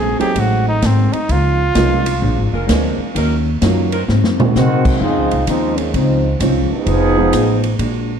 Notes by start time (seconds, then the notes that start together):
Already playing: A#1 G#2 F#3 A3 C4 G#4
0.19 F#3 A3 C4 D#4 G4 G#4, muted upright bass stroke, ride
0.36 A1 G#2 F#3 A3 C4, kick, ride
0.40 F#4
0.68 D#4
0.82 G#1 G#2 F#3 A3 C4, kick, snare, hi-hat pedal, ride
0.86 C4
1.13 D#4, muted upright bass stroke, ride
1.29 C#2 C#3 F3 A#3 F4, kick, ride
1.33 D#4
1.75 C2 C#3 F3 G#3 A#3 C#4 D#4 F4, kick, snare, hi-hat pedal, ride
2.06 ride
2.21 A#1 A#2 F3 G#3 D4, kick
2.36 G#1
2.52 F1 G#3 D4 F4 A#4
2.67 D2 A#2 F3 G#3 A#3 C4 D4 G#4, kick, snare, hi-hat pedal, ride
2.98 muted upright bass stroke
3.14 D#2 D#3 F#3 A#3 C#4 D#4 F#4 A#4, kick, ride
3.62 F#2 D#3 F#3 A#3 C#4 D#4 F4 F#4, kick, snare, hi-hat pedal, ride
3.92 F#3 C4 D#4 A#4, ride
4.08 G#2 F#3 C4 D#4, snare
4.23 F#2, snare
4.40 D#2 G#3 A#3 C4 D#4 F#4, mid tom
4.55 G#2 C3 D#3 F#3 G#3 C4 D#4 F#4, snare, hi-hat pedal
4.85 kick, crash
5.01 F2 C#3 F3 G#3 C4 D#4 F4, kick
5.18 C#2
5.31 C2, ride
5.46 D#2 C#3 F3 G#3 C4 D#4, kick, hi-hat pedal, ride
5.50 F3 C4 D#4
5.77 D#3 F3 G#3 C#4, ride
5.94 C#2 C#3 F3 G#3 C4 D#4, kick, ride
6.40 C2 C#3 F3 G#3 C4 C#4 D#4 F4, kick, hi-hat pedal, ride
6.71 F3 B3 D#4 G#4, muted upright bass stroke
6.86 F1 F3 B3 D#4, kick, ride
6.91 G#4
7.17 F3 G#3 B3 D#4 F4
7.32 A1 F3 B3 D#4, kick, hi-hat pedal, ride
7.37 G#4
7.64 ride
7.79 A#1 A#2 F#3 G#3 D4, kick, ride